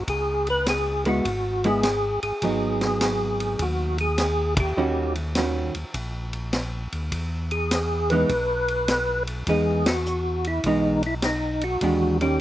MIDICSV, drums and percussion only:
0, 0, Header, 1, 2, 480
1, 0, Start_track
1, 0, Tempo, 587084
1, 61, Time_signature, 4, 2, 24, 8
1, 10143, End_track
2, 0, Start_track
2, 0, Title_t, "Drums"
2, 63, Note_on_c, 9, 36, 34
2, 63, Note_on_c, 9, 51, 64
2, 144, Note_off_c, 9, 36, 0
2, 145, Note_off_c, 9, 51, 0
2, 381, Note_on_c, 9, 51, 45
2, 463, Note_off_c, 9, 51, 0
2, 542, Note_on_c, 9, 44, 58
2, 542, Note_on_c, 9, 51, 63
2, 543, Note_on_c, 9, 38, 63
2, 624, Note_off_c, 9, 44, 0
2, 624, Note_off_c, 9, 51, 0
2, 625, Note_off_c, 9, 38, 0
2, 859, Note_on_c, 9, 51, 42
2, 941, Note_off_c, 9, 51, 0
2, 1023, Note_on_c, 9, 36, 31
2, 1023, Note_on_c, 9, 51, 61
2, 1104, Note_off_c, 9, 36, 0
2, 1105, Note_off_c, 9, 51, 0
2, 1341, Note_on_c, 9, 51, 44
2, 1423, Note_off_c, 9, 51, 0
2, 1498, Note_on_c, 9, 38, 64
2, 1498, Note_on_c, 9, 44, 65
2, 1498, Note_on_c, 9, 51, 61
2, 1579, Note_off_c, 9, 44, 0
2, 1579, Note_off_c, 9, 51, 0
2, 1580, Note_off_c, 9, 38, 0
2, 1820, Note_on_c, 9, 51, 43
2, 1901, Note_off_c, 9, 51, 0
2, 1976, Note_on_c, 9, 51, 61
2, 1979, Note_on_c, 9, 36, 32
2, 2058, Note_off_c, 9, 51, 0
2, 2061, Note_off_c, 9, 36, 0
2, 2298, Note_on_c, 9, 51, 47
2, 2299, Note_on_c, 9, 38, 53
2, 2380, Note_off_c, 9, 51, 0
2, 2381, Note_off_c, 9, 38, 0
2, 2459, Note_on_c, 9, 38, 69
2, 2459, Note_on_c, 9, 44, 51
2, 2459, Note_on_c, 9, 51, 67
2, 2540, Note_off_c, 9, 44, 0
2, 2540, Note_off_c, 9, 51, 0
2, 2541, Note_off_c, 9, 38, 0
2, 2780, Note_on_c, 9, 51, 45
2, 2862, Note_off_c, 9, 51, 0
2, 2936, Note_on_c, 9, 51, 60
2, 2937, Note_on_c, 9, 36, 32
2, 3018, Note_off_c, 9, 51, 0
2, 3019, Note_off_c, 9, 36, 0
2, 3255, Note_on_c, 9, 51, 45
2, 3337, Note_off_c, 9, 51, 0
2, 3416, Note_on_c, 9, 38, 65
2, 3416, Note_on_c, 9, 44, 52
2, 3416, Note_on_c, 9, 51, 69
2, 3497, Note_off_c, 9, 44, 0
2, 3497, Note_off_c, 9, 51, 0
2, 3498, Note_off_c, 9, 38, 0
2, 3733, Note_on_c, 9, 51, 71
2, 3735, Note_on_c, 9, 36, 88
2, 3815, Note_off_c, 9, 51, 0
2, 3817, Note_off_c, 9, 36, 0
2, 4214, Note_on_c, 9, 51, 47
2, 4296, Note_off_c, 9, 51, 0
2, 4374, Note_on_c, 9, 44, 55
2, 4374, Note_on_c, 9, 51, 67
2, 4375, Note_on_c, 9, 38, 63
2, 4456, Note_off_c, 9, 44, 0
2, 4456, Note_off_c, 9, 51, 0
2, 4457, Note_off_c, 9, 38, 0
2, 4697, Note_on_c, 9, 51, 44
2, 4779, Note_off_c, 9, 51, 0
2, 4857, Note_on_c, 9, 51, 60
2, 4858, Note_on_c, 9, 36, 32
2, 4939, Note_off_c, 9, 51, 0
2, 4940, Note_off_c, 9, 36, 0
2, 5175, Note_on_c, 9, 51, 44
2, 5257, Note_off_c, 9, 51, 0
2, 5336, Note_on_c, 9, 44, 57
2, 5336, Note_on_c, 9, 51, 59
2, 5337, Note_on_c, 9, 38, 65
2, 5418, Note_off_c, 9, 44, 0
2, 5418, Note_off_c, 9, 51, 0
2, 5419, Note_off_c, 9, 38, 0
2, 5661, Note_on_c, 9, 51, 45
2, 5743, Note_off_c, 9, 51, 0
2, 5820, Note_on_c, 9, 36, 31
2, 5820, Note_on_c, 9, 51, 59
2, 5902, Note_off_c, 9, 36, 0
2, 5902, Note_off_c, 9, 51, 0
2, 6139, Note_on_c, 9, 51, 46
2, 6221, Note_off_c, 9, 51, 0
2, 6304, Note_on_c, 9, 44, 56
2, 6304, Note_on_c, 9, 51, 71
2, 6305, Note_on_c, 9, 38, 63
2, 6386, Note_off_c, 9, 38, 0
2, 6386, Note_off_c, 9, 44, 0
2, 6386, Note_off_c, 9, 51, 0
2, 6621, Note_on_c, 9, 51, 44
2, 6703, Note_off_c, 9, 51, 0
2, 6780, Note_on_c, 9, 51, 60
2, 6782, Note_on_c, 9, 36, 34
2, 6862, Note_off_c, 9, 51, 0
2, 6864, Note_off_c, 9, 36, 0
2, 7099, Note_on_c, 9, 51, 45
2, 7180, Note_off_c, 9, 51, 0
2, 7260, Note_on_c, 9, 44, 54
2, 7260, Note_on_c, 9, 51, 68
2, 7261, Note_on_c, 9, 38, 67
2, 7342, Note_off_c, 9, 44, 0
2, 7342, Note_off_c, 9, 51, 0
2, 7343, Note_off_c, 9, 38, 0
2, 7581, Note_on_c, 9, 51, 47
2, 7663, Note_off_c, 9, 51, 0
2, 7740, Note_on_c, 9, 51, 57
2, 7742, Note_on_c, 9, 36, 35
2, 7822, Note_off_c, 9, 51, 0
2, 7824, Note_off_c, 9, 36, 0
2, 8061, Note_on_c, 9, 51, 64
2, 8062, Note_on_c, 9, 38, 83
2, 8143, Note_off_c, 9, 51, 0
2, 8144, Note_off_c, 9, 38, 0
2, 8225, Note_on_c, 9, 44, 57
2, 8307, Note_off_c, 9, 44, 0
2, 8539, Note_on_c, 9, 51, 45
2, 8621, Note_off_c, 9, 51, 0
2, 8696, Note_on_c, 9, 51, 59
2, 8699, Note_on_c, 9, 36, 33
2, 8777, Note_off_c, 9, 51, 0
2, 8781, Note_off_c, 9, 36, 0
2, 9015, Note_on_c, 9, 51, 43
2, 9096, Note_off_c, 9, 51, 0
2, 9175, Note_on_c, 9, 44, 59
2, 9175, Note_on_c, 9, 51, 67
2, 9176, Note_on_c, 9, 38, 65
2, 9256, Note_off_c, 9, 44, 0
2, 9256, Note_off_c, 9, 51, 0
2, 9257, Note_off_c, 9, 38, 0
2, 9495, Note_on_c, 9, 51, 45
2, 9577, Note_off_c, 9, 51, 0
2, 9655, Note_on_c, 9, 51, 57
2, 9657, Note_on_c, 9, 36, 32
2, 9737, Note_off_c, 9, 51, 0
2, 9739, Note_off_c, 9, 36, 0
2, 9981, Note_on_c, 9, 51, 45
2, 10063, Note_off_c, 9, 51, 0
2, 10143, End_track
0, 0, End_of_file